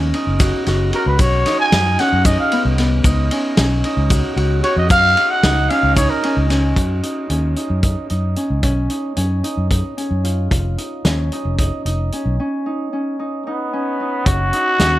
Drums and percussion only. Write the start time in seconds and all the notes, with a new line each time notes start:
0.14 ride
0.40 kick, snare, ride, shaker
0.67 snare, ride
0.93 ride
1.19 kick, ride, shaker
1.46 snare, ride
1.72 snare, ride
1.99 snare, ride
2.25 kick, ride, shaker
2.52 ride
2.78 snare, ride
3.04 kick, ride, shaker
3.31 ride
3.57 snare, ride
3.84 ride
4.10 kick, ride, shaker
4.37 ride
4.64 ride
4.90 kick, ride, shaker
5.17 ride
5.43 snare, ride
5.70 ride, shaker
5.97 kick, ride, shaker
6.24 ride
6.50 snare, ride, shaker
6.76 kick, closed hi-hat
7.03 closed hi-hat
7.30 closed hi-hat
7.56 closed hi-hat
7.83 kick, closed hi-hat
8.10 closed hi-hat
8.36 closed hi-hat
8.63 kick, closed hi-hat
8.90 closed hi-hat
9.17 closed hi-hat
9.44 closed hi-hat
9.71 kick, closed hi-hat
9.98 closed hi-hat
10.25 closed hi-hat
10.51 kick, closed hi-hat
10.78 closed hi-hat
11.05 snare, closed hi-hat
11.32 closed hi-hat
11.59 kick, closed hi-hat
11.86 closed hi-hat
12.12 closed hi-hat
14.26 kick, closed hi-hat
14.53 closed hi-hat
14.80 snare, closed hi-hat